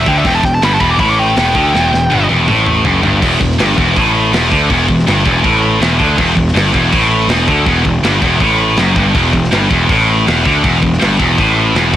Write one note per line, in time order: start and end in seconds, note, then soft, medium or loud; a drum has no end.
0.05 0.24 D2 loud
0.05 0.24 D3 loud
0.05 0.16 G5 medium
0.05 kick loud
0.17 0.26 E5 medium
0.23 0.42 E1 loud
0.23 0.41 E2 medium
0.23 0.34 G5 loud
0.23 kick loud
0.23 open hi-hat medium
0.36 0.45 A5 medium
0.43 0.60 E1 medium
0.43 0.58 E2 medium
0.43 0.53 G5 loud
0.43 kick medium
0.43 snare soft
0.55 0.64 A5 loud
0.62 0.79 G1 medium
0.62 0.80 G2 loud
0.62 0.73 B5 loud
0.62 snare loud
0.62 open hi-hat medium
0.73 0.81 A5 medium
0.80 0.98 E1 loud
0.80 0.98 E2 loud
0.80 0.91 B5 loud
0.80 kick loud
0.91 0.99 D6 loud
0.99 1.33 A1 medium
0.99 1.35 A2 loud
0.99 1.08 B5 loud
0.99 kick loud
0.99 open hi-hat medium
1.10 1.18 D6 loud
1.19 2.26 G5 loud
1.36 1.54 E1 loud
1.36 1.54 E2 loud
1.36 snare loud
1.36 open hi-hat medium
1.55 1.72 D2 loud
1.55 1.73 D3 loud
1.55 kick loud
1.72 1.91 E1 loud
1.72 1.91 E2 loud
1.72 snare medium
1.92 2.09 E1 medium
1.92 2.07 E2 medium
1.92 snare medium
2.10 2.27 G1 loud
2.10 2.28 G2 loud
2.10 high tom medium
2.29 2.47 E1 medium
2.29 2.47 E2 loud
2.29 high tom medium
2.46 2.82 A1 loud
2.46 2.83 A2 loud
2.46 mid tom medium
2.66 mid tom medium
2.84 3.02 F#1 loud
2.84 3.02 F#2 loud
2.84 floor tom loud
3.02 3.21 G1 loud
3.02 3.20 G2 loud
3.02 floor tom loud
3.21 3.39 E1 loud
3.21 3.39 E2 loud
3.21 kick loud
3.21 crash loud
3.40 3.57 E1 medium
3.40 3.55 E2 medium
3.40 kick medium
3.40 crash medium
3.52 snare soft
3.59 3.76 G1 loud
3.59 3.76 G2 loud
3.59 snare loud
3.59 crash medium
3.77 3.94 E1 medium
3.77 3.95 E2 loud
3.77 kick loud
3.77 crash medium
3.96 4.30 A1 loud
3.96 4.32 A2 loud
3.96 kick loud
3.96 crash medium
4.15 crash medium
4.32 4.50 E1 loud
4.32 4.50 E2 loud
4.32 snare loud
4.32 crash loud
4.50 4.68 D2 loud
4.50 4.68 D3 loud
4.50 kick medium
4.50 crash medium
4.70 4.87 E1 loud
4.70 4.87 E2 loud
4.70 kick loud
4.70 crash medium
4.88 5.05 E1 medium
4.88 5.03 E2 medium
4.88 kick medium
4.88 crash medium
4.99 snare soft
5.07 5.24 G1 loud
5.07 5.24 G2 loud
5.07 snare loud
5.07 crash medium
5.24 5.42 E1 loud
5.24 5.43 E2 loud
5.24 kick loud
5.24 crash medium
5.43 5.78 A1 loud
5.43 5.80 A2 loud
5.43 kick loud
5.43 crash medium
5.63 crash medium
5.80 5.98 E1 loud
5.80 5.98 E2 loud
5.80 snare loud
5.80 crash medium
5.98 6.17 D2 loud
5.98 6.17 D3 loud
5.98 kick loud
5.98 crash medium
6.16 6.35 E1 loud
6.16 6.34 E2 loud
6.16 kick loud
6.16 crash medium
6.35 6.53 E1 medium
6.35 6.50 E2 medium
6.35 kick medium
6.35 crash medium
6.48 snare soft
6.54 6.71 G1 loud
6.54 6.72 G2 loud
6.54 snare loud
6.54 crash medium
6.73 6.91 E1 loud
6.73 6.91 E2 loud
6.73 kick loud
6.73 crash medium
6.91 7.27 A1 loud
6.91 7.28 A2 loud
6.91 kick loud
6.91 crash medium
7.11 crash medium
7.28 7.46 E1 loud
7.28 7.47 E2 loud
7.28 snare loud
7.28 crash medium
7.47 7.65 D2 loud
7.47 7.65 D3 loud
7.47 kick loud
7.47 crash medium
7.66 7.83 E1 loud
7.66 7.84 E2 loud
7.66 kick loud
7.66 crash medium
7.85 8.02 E1 medium
7.85 8.00 E2 medium
7.85 kick medium
7.85 crash medium
8.03 8.20 G1 loud
8.03 8.21 G2 loud
8.03 snare loud
8.03 crash loud
8.22 8.39 E1 medium
8.22 8.40 E2 loud
8.22 kick loud
8.22 crash medium
8.40 8.75 A1 medium
8.40 8.77 A2 loud
8.40 kick loud
8.40 crash medium
8.58 crash medium
8.77 8.95 F#1 loud
8.77 8.96 F#2 loud
8.77 snare loud
8.77 crash medium
8.95 9.14 G1 loud
8.95 9.14 G2 loud
8.95 kick loud
8.95 crash medium
9.14 9.32 E1 loud
9.14 9.33 E2 loud
9.14 kick loud
9.14 crash medium
9.33 9.51 E1 medium
9.33 9.48 E2 medium
9.33 kick medium
9.33 crash medium
9.44 snare soft
9.51 9.69 G1 medium
9.51 9.70 G2 loud
9.51 snare loud
9.51 crash medium
9.70 9.88 E1 medium
9.70 9.88 E2 loud
9.70 kick loud
9.70 crash medium
9.89 10.24 A1 loud
9.89 10.25 A2 loud
9.89 kick loud
9.89 crash medium
10.08 crash medium
10.26 10.44 E1 loud
10.26 10.44 E2 loud
10.26 snare loud
10.26 crash medium
10.44 10.63 D2 loud
10.44 10.63 D3 loud
10.44 kick loud
10.44 crash medium
10.63 10.81 E1 loud
10.63 10.80 E2 loud
10.63 kick loud
10.63 crash loud
10.82 11.00 E1 medium
10.82 10.97 E2 medium
10.82 kick medium
10.82 crash medium
10.93 snare soft
10.99 11.18 G1 loud
10.99 11.18 G2 loud
10.99 snare loud
10.99 crash medium
11.19 11.37 E1 medium
11.19 11.37 E2 loud
11.19 kick loud
11.19 crash medium
11.38 11.73 A1 medium
11.38 11.75 A2 loud
11.38 kick loud
11.38 crash medium
11.57 crash soft
11.75 11.92 E1 loud
11.75 11.93 E2 loud
11.75 snare loud
11.75 crash medium
11.93 11.96 D2 loud